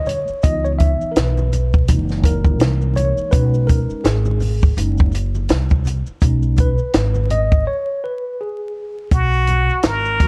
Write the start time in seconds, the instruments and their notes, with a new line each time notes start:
Already playing: upright bass D2
0.06 tine electric piano C#5, closed hi-hat, low conga, maracas
0.28 muted upright bass stroke, maracas
0.43 upright bass C#2, tine electric piano E3 B3 D#4 D#5, kick, closed hi-hat, maracas
0.65 tine electric piano C#5, maracas
0.79 tine electric piano E5, kick, closed hi-hat, high conga, low conga, maracas
1.01 muted upright bass stroke, maracas
1.12 tine electric piano A#4
1.16 upright bass B1, tine electric piano B4, snare, closed hi-hat, maracas
1.37 high conga, maracas
1.52 closed hi-hat, low conga, maracas
1.73 kick, maracas
1.88 upright bass F#1, tine electric piano E3 G#3 A#3 D#4, kick, closed hi-hat, maracas
2.09 snare, maracas
2.24 tine electric piano A#4, kick, closed hi-hat, maracas
2.44 kick, high conga, maracas
2.60 upright bass C2, snare, closed hi-hat, maracas
2.82 maracas
2.96 tine electric piano C#5, closed hi-hat, low conga, maracas
3.18 muted upright bass stroke, maracas
3.31 upright bass B1, tine electric piano G#3 C#4 D#4 B4, kick, closed hi-hat, maracas
3.54 maracas
3.67 tine electric piano A#4, kick, closed hi-hat, high conga, low conga, maracas
3.90 muted upright bass stroke, maracas
4.04 upright bass G#1, tine electric piano G#4, snare, closed hi-hat, maracas
4.25 high conga, maracas
4.40 open hi-hat, low conga, maracas
4.62 kick, maracas
4.76 upright bass F#1, tine electric piano G#3 C#4 D#4, closed hi-hat, maracas
4.98 kick, maracas
5.12 closed hi-hat, maracas
5.35 high conga, maracas
5.49 upright bass C2, snare, closed hi-hat, maracas
5.70 kick, maracas
5.85 closed hi-hat, low conga, maracas
6.06 muted upright bass stroke, maracas
6.21 upright bass B1, tine electric piano G#3 C#4 D#4, kick, closed hi-hat, maracas
6.42 maracas
6.57 tine electric piano B4, kick, closed hi-hat, high conga, low conga, maracas
6.78 muted upright bass stroke, maracas
6.93 upright bass G#1, snare, closed hi-hat, maracas
7.15 high conga, maracas
7.30 tine electric piano D#5, closed hi-hat, low conga, maracas
7.52 kick, maracas
7.67 tine electric piano C#5
8.04 tine electric piano B4
8.41 tine electric piano G#4
9.11 upright bass B1, muted trumpet F#4, kick, closed hi-hat, maracas
9.34 maracas
9.47 closed hi-hat, high conga, low conga, maracas
9.69 muted upright bass stroke, maracas
9.83 upright bass G#1, muted trumpet A#4, snare, closed hi-hat, maracas
10.05 maracas
10.20 tine electric piano D#3 F#3 G#3 B3 F#4, kick, closed hi-hat, low conga, maracas